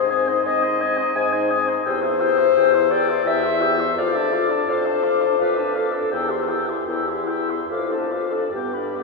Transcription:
0.00 0.37 G#2 medium
0.00 0.12 D#4 soft
0.00 0.48 C5 medium
0.00 0.12 D#5 soft
0.00 0.11 C6 medium
0.10 0.31 C4 soft
0.10 0.30 G#5 medium
0.10 0.29 D#6 medium
0.28 0.46 D#4 soft
0.28 0.44 D#5 medium
0.28 0.45 C6 medium
0.45 1.08 G#2 medium
0.45 0.67 C4 medium
0.45 1.18 D#5 loud
0.45 0.65 G#5 medium
0.45 0.65 D#6 medium
0.63 0.84 D#4 medium
0.63 0.83 D#5 medium
0.63 0.83 C6 medium
0.81 1.01 C4 medium
0.81 0.99 G#5 medium
0.81 1.00 D#6 medium
0.97 1.16 D#4 soft
0.97 1.15 D#5 medium
0.97 1.14 C6 medium
1.15 1.79 G#2 medium
1.15 1.36 C4 medium
1.15 1.35 G#5 medium
1.15 1.52 G#5 medium
1.15 1.34 D#6 medium
1.33 1.53 D#4 medium
1.33 1.53 D#5 medium
1.33 1.51 C6 medium
1.49 1.70 C4 medium
1.49 1.70 G#5 medium
1.49 1.68 D#6 medium
1.67 1.86 D#4 medium
1.67 1.84 D#5 medium
1.67 1.84 C6 soft
1.85 2.48 E2 medium
1.85 2.06 G4 medium
1.85 2.93 C5 loud
1.85 2.05 G5 medium
1.85 2.03 E6 medium
2.02 2.24 E4 medium
2.02 2.22 E5 medium
2.02 2.22 C6 medium
2.20 2.41 G4 medium
2.20 2.40 G5 medium
2.20 2.40 E6 medium
2.38 2.57 E4 medium
2.38 2.56 E5 medium
2.38 2.56 C6 medium
2.56 3.18 E2 medium
2.56 2.75 G4 medium
2.56 2.76 G5 medium
2.56 2.76 E6 medium
2.74 2.94 E4 medium
2.74 2.94 E5 medium
2.74 2.93 C6 medium
2.91 3.11 G4 medium
2.91 3.29 D5 loud
2.91 3.10 G5 medium
2.91 3.11 E6 medium
3.09 3.26 E4 medium
3.09 3.24 E5 medium
3.09 3.27 C6 medium
3.25 3.89 E2 medium
3.25 3.45 G4 medium
3.25 3.97 E5 loud
3.25 3.45 G5 medium
3.25 3.47 E6 medium
3.44 3.63 E4 medium
3.44 3.62 E5 medium
3.44 3.64 C6 medium
3.61 3.81 G4 medium
3.61 3.81 G5 medium
3.61 3.82 E6 medium
3.79 3.96 E4 medium
3.79 3.98 E5 medium
3.79 3.98 C6 medium
3.97 4.60 F2 medium
3.97 4.16 F4 medium
3.97 4.71 D5 loud
3.97 4.18 F5 medium
3.97 4.19 D6 medium
4.15 4.34 D4 medium
4.15 4.34 D5 medium
4.15 4.35 A5 medium
4.32 4.51 F4 medium
4.32 4.52 F5 medium
4.32 4.52 D6 medium
4.50 4.67 D4 medium
4.50 4.69 D5 medium
4.50 4.68 A5 medium
4.68 5.33 F2 medium
4.68 4.88 F4 medium
4.68 5.43 C5 loud
4.68 4.87 F5 medium
4.68 4.88 D6 medium
4.86 5.05 D4 medium
4.86 5.05 D5 medium
4.86 5.05 A5 medium
5.03 5.24 F4 medium
5.03 5.23 F5 medium
5.03 5.23 D6 medium
5.21 5.39 D4 medium
5.21 5.39 D5 medium
5.21 5.39 A5 medium
5.39 5.96 F2 medium
5.39 5.60 F4 medium
5.39 5.79 B4 medium
5.39 5.58 F5 medium
5.39 5.60 D6 medium
5.57 5.78 D4 medium
5.57 5.77 D5 medium
5.57 5.78 A5 medium
5.76 5.96 F4 soft
5.76 6.14 A4 medium
5.76 5.94 F5 medium
5.76 5.96 D6 medium
5.92 6.12 D4 soft
5.92 6.11 D5 medium
5.92 6.13 A5 medium
6.12 6.80 E2 medium
6.12 6.32 G4 medium
6.12 6.90 G4 medium
6.12 6.31 G5 medium
6.12 6.32 E6 medium
6.29 6.51 E4 medium
6.29 6.50 E5 soft
6.29 6.52 C6 medium
6.48 6.71 G4 medium
6.48 6.68 G5 medium
6.48 6.71 E6 medium
6.66 6.88 E4 soft
6.66 6.86 E5 soft
6.66 6.88 C6 soft
6.87 7.61 E2 medium
6.87 7.73 E4 medium
6.87 7.10 G4 soft
6.87 7.09 G5 soft
6.87 7.11 E6 medium
7.07 7.30 E4 soft
7.07 7.29 E5 soft
7.07 7.32 C6 soft
7.27 7.50 G4 soft
7.27 7.51 G5 medium
7.27 7.52 E6 soft
7.49 7.69 E4 soft
7.49 7.70 E5 soft
7.49 7.70 C6 soft
7.69 8.44 F2 medium
7.69 7.93 F4 soft
7.69 7.81 A4 medium
7.69 7.94 F5 soft
7.69 7.94 D6 soft
7.80 7.90 B4 medium
7.89 8.13 D4 soft
7.89 8.00 A4 medium
7.89 8.15 D5 soft
7.93 8.13 A5 soft
7.98 8.09 B4 medium
8.07 8.34 F4 soft
8.07 8.18 A4 medium
8.07 8.33 D6 soft
8.13 8.27 B4 medium
8.13 8.35 F5 soft
8.25 8.55 A4 medium
8.32 8.53 D4 soft
8.32 8.54 D5 soft
8.32 8.53 A5 soft
8.53 9.03 G2 medium
8.53 8.76 B3 soft
8.53 9.03 G4 medium
8.53 8.79 G5 soft
8.53 8.75 D6 soft
8.74 8.98 D4 soft
8.74 9.02 D5 soft
8.74 8.97 B5 soft
8.96 9.03 B3 soft
8.96 9.03 D6 soft
9.00 9.03 G5 soft

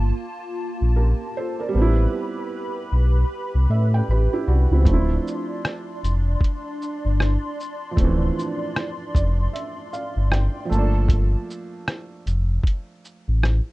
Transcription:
0.00 0.12 G1 loud
0.00 1.30 A#3 medium
0.00 1.70 A#3 medium
0.00 1.32 D4 medium
0.00 1.35 F4 medium
0.00 1.70 F4 medium
0.00 1.28 A4 medium
0.00 1.70 A5 medium
0.81 1.14 A#1 medium
0.96 1.34 G4 soft
0.96 1.33 A#4 medium
1.37 1.59 A4 medium
1.37 1.58 C5 medium
1.60 1.96 A#4 medium
1.60 1.96 D5 medium
1.69 4.79 G3 medium
1.73 2.07 A1 loud
1.73 4.03 B3 medium
1.73 4.82 G4 medium
1.73 4.82 B4 medium
1.73 4.82 B5 loud
1.77 4.05 C4 medium
1.82 4.07 E4 medium
2.92 3.24 B1 medium
3.55 3.67 C2 medium
3.70 4.02 A2 loud
3.70 3.91 E5 medium
3.94 4.08 G5 medium
4.09 4.28 A1 loud
4.09 4.32 G4 soft
4.09 4.31 B4 medium
4.09 4.83 B5 medium
4.33 4.47 E4 medium
4.33 4.47 G4 medium
4.48 4.67 C2 medium
4.48 4.70 D4 medium
4.48 4.69 F#4 medium
4.71 4.88 C#2 medium
4.71 4.88 C4 medium
4.71 4.92 E4 medium
4.81 7.90 F3 medium
4.85 5.18 D1 loud
4.85 7.93 A3 medium
4.85 11.05 D4 medium
4.85 10.66 D5 medium
4.85 10.66 C6 medium
4.85 kick loud
4.85 closed hi-hat medium
4.89 7.95 C4 medium
4.93 7.97 E4 medium
5.27 shaker medium
5.65 cross-stick loud
5.65 closed hi-hat medium
6.03 6.36 F1 medium
6.03 closed hi-hat soft
6.03 shaker soft
6.41 kick loud
6.41 closed hi-hat medium
6.82 shaker soft
7.05 7.37 G1 medium
7.20 cross-stick loud
7.20 closed hi-hat medium
7.60 shaker soft
7.91 10.63 F3 medium
7.95 8.30 D1 loud
7.95 10.65 A3 medium
7.95 kick loud
7.95 closed hi-hat medium
8.00 10.67 C4 medium
8.04 10.69 E3 medium
8.39 shaker medium
8.76 cross-stick loud
8.76 closed hi-hat medium
9.15 9.47 F1 medium
9.15 9.51 D5 medium
9.15 kick medium
9.15 closed hi-hat medium
9.15 shaker medium
9.53 9.89 E5 medium
9.53 closed hi-hat medium
9.93 10.29 F5 medium
9.93 shaker soft
10.16 10.49 G1 medium
10.32 10.68 G5 medium
10.32 cross-stick loud
10.32 closed hi-hat medium
10.65 13.72 F3 medium
10.69 11.36 G1 medium
10.69 13.72 A3 medium
10.69 11.08 A4 medium
10.69 11.08 A5 medium
10.69 11.07 A5 medium
10.69 shaker soft
10.74 13.72 A#3 medium
10.78 13.72 D4 medium
11.09 kick loud
11.09 closed hi-hat medium
11.50 shaker medium
11.88 cross-stick loud
11.88 closed hi-hat medium
12.27 12.59 F1 medium
12.27 closed hi-hat soft
12.27 shaker soft
12.64 kick loud
12.64 closed hi-hat medium
13.05 shaker soft
13.28 13.60 A1 medium
13.43 cross-stick loud
13.43 closed hi-hat medium

